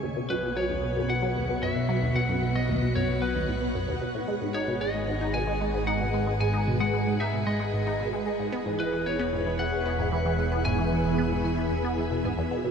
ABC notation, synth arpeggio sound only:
X:1
M:4/4
L:1/16
Q:1/4=113
K:E
V:1 name="Synth arpeggio sound" clef=bass
D,, B,, F,, B,, F, D,, B,, F,, B,, F, D,, B,, F,, B,, F, D,, | B,, F,, B,, F, D,, B,, F,, B,, F, D,, A,, B,, F,, D,, B,, A,, | G, G,, D B,, G, G, G,, D B,, G, G, G,, D B,, G, G, | G,, D B,, G, G, G,, D B,, G, G, G,, D B,, G, G, G,, |
B, G,, E, E, E,, B, G,, E, E, E,, B, G,, E, E, E,, B, | G,, E, E, E,, B, G,, E, E, E,, B, E, B,, G,, E,, B,, B,, |]